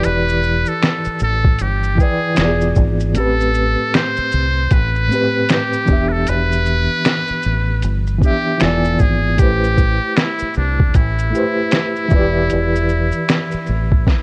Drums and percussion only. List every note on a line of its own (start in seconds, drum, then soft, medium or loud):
0.03 closed hi-hat medium
0.03 shaker medium
0.29 shaker soft
0.43 shaker soft
0.65 shaker soft
0.82 finger snap medium
0.82 snare loud
0.82 closed hi-hat medium
0.82 shaker medium
1.04 shaker soft
1.19 shaker medium
1.45 kick medium
1.59 closed hi-hat medium
1.59 shaker medium
1.83 shaker soft
1.98 kick medium
1.98 shaker soft
2.36 finger snap medium
2.36 snare loud
2.36 closed hi-hat medium
2.36 shaker medium
2.61 shaker soft
2.75 kick medium
2.75 shaker soft
3.00 shaker soft
3.15 closed hi-hat medium
3.15 shaker medium
3.40 shaker soft
3.54 shaker soft
3.94 finger snap medium
3.94 snare loud
3.94 closed hi-hat medium
3.94 shaker medium
4.16 shaker soft
4.31 shaker medium
4.71 kick medium
4.71 closed hi-hat medium
4.71 shaker medium
4.95 shaker soft
5.11 shaker soft
5.49 finger snap medium
5.49 snare loud
5.49 closed hi-hat medium
5.49 shaker medium
5.73 shaker soft
5.87 kick medium
5.87 shaker soft
6.27 closed hi-hat medium
6.27 shaker medium
6.52 shaker soft
6.66 shaker soft
7.05 finger snap medium
7.05 snare loud
7.05 closed hi-hat medium
7.05 shaker medium
7.27 shaker soft
7.42 shaker soft
7.82 closed hi-hat medium
7.82 shaker medium
8.07 shaker soft
8.22 kick medium
8.22 shaker soft
8.60 finger snap medium
8.60 snare loud
8.60 closed hi-hat medium
8.60 shaker medium
8.85 shaker soft
8.99 kick medium
8.99 shaker soft
9.38 kick loud
9.38 closed hi-hat medium
9.38 shaker medium
9.64 shaker soft
9.78 kick medium
9.78 shaker soft
10.16 finger snap medium
10.16 snare loud
10.16 closed hi-hat medium
10.16 shaker medium
10.39 shaker soft
10.54 shaker soft
10.80 kick loud
10.94 kick medium
10.94 closed hi-hat medium
10.94 shaker medium
11.19 shaker medium
11.34 shaker soft
11.71 finger snap medium
11.71 snare loud
11.71 closed hi-hat medium
11.71 shaker medium
11.96 shaker soft
12.10 kick loud
12.10 shaker soft
12.50 closed hi-hat medium
12.50 shaker medium
12.75 shaker soft
12.89 shaker soft
13.12 shaker soft
13.29 finger snap medium
13.29 snare loud
13.29 closed hi-hat medium
13.29 shaker medium
13.51 shaker soft
13.66 shaker soft
13.92 kick loud
14.07 kick medium
14.07 snare medium